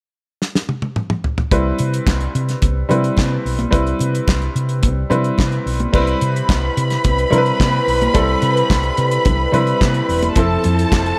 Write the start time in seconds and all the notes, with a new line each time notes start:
0.42 snare
0.55 snare
0.69 high tom
0.82 high tom
0.96 mid tom
1.10 mid tom
1.24 floor tom
1.38 floor tom
1.51 C2 G3 C4 E4 B4, kick, closed hi-hat, muted conga
1.79 C3, closed hi-hat, muted conga
1.94 closed hi-hat
2.07 C2, kick, snare, clap, high conga
2.20 closed hi-hat
2.35 C3, closed hi-hat
2.49 snare, closed hi-hat
2.62 C2, kick, closed hi-hat, muted conga
2.89 C3 G3 C4 E4 B4, closed hi-hat, low conga
3.04 closed hi-hat
3.17 C3, kick, snare, clap, high conga
3.45 B1, open hi-hat
3.59 closed hi-hat, high conga
3.71 C2 G3 C4 E4 B4, kick, closed hi-hat, muted conga
3.87 closed hi-hat
3.99 C3, closed hi-hat, muted conga
4.15 closed hi-hat
4.28 C2, kick, snare, clap, high conga
4.42 closed hi-hat
4.55 C3, closed hi-hat
4.69 closed hi-hat
4.83 C2, kick, closed hi-hat, muted conga
5.10 C3 G3 C4 E4 B4, closed hi-hat, low conga
5.24 closed hi-hat
5.38 C3, kick, snare, clap, high conga
5.52 closed hi-hat
5.66 B1, open hi-hat
5.80 closed hi-hat, high conga
5.92 C2 C3 G3 C4 E4 B4 B5, kick, crash, muted conga
6.07 closed hi-hat
6.21 C3, closed hi-hat
6.36 closed hi-hat
6.49 C2, kick, snare, clap, high conga
6.77 C3, closed hi-hat
6.90 snare, closed hi-hat
7.04 C2, kick, closed hi-hat, muted conga
7.18 closed hi-hat
7.30 C3 G3 C4 E4 A#4, closed hi-hat, low conga
7.38 B4
7.46 closed hi-hat
7.60 C3, kick, snare, clap, high conga
7.87 B1, open hi-hat
8.01 closed hi-hat, high conga
8.14 C2 G3 C4 E4 A4, kick, closed hi-hat, muted conga
8.42 C3, closed hi-hat
8.57 closed hi-hat
8.70 C2, kick, snare, clap, high conga
8.83 closed hi-hat
8.97 C3, closed hi-hat
9.11 closed hi-hat
9.25 C2, kick, closed hi-hat, muted conga, low conga
9.52 C3 G3 C4 E4 B4, closed hi-hat, low conga
9.67 closed hi-hat
9.81 C3, kick, snare, clap, high conga
9.94 closed hi-hat
10.09 E1, open hi-hat
10.22 closed hi-hat, high conga
10.36 F1 F3 C4 E4 A4 A5, kick, closed hi-hat, muted conga
10.64 F2, closed hi-hat, muted conga
10.79 closed hi-hat
10.92 F1, kick, snare, clap, high conga
11.06 closed hi-hat